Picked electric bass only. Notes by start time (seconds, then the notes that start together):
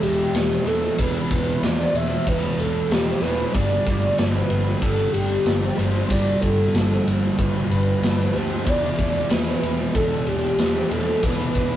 0.02 E1
0.34 E1
0.66 E1
0.99 E1
1.31 E1
1.63 E1
1.94 E1
2.27 E1
2.58 E1
2.89 E1
3.22 E1
3.54 G1
3.86 G1
4.19 G1
4.50 G1
4.82 G1
5.13 G1
5.46 G1
5.78 G1
6.10 G1
6.42 G1
6.74 G1
7.06 G1
7.39 G1
7.70 G1
8.02 G1
8.35 D2
8.67 E1
8.99 E1
9.31 E1
9.63 E1
9.95 E1
10.26 E1
10.59 E1
10.91 E1
11.23 E1
11.55 E1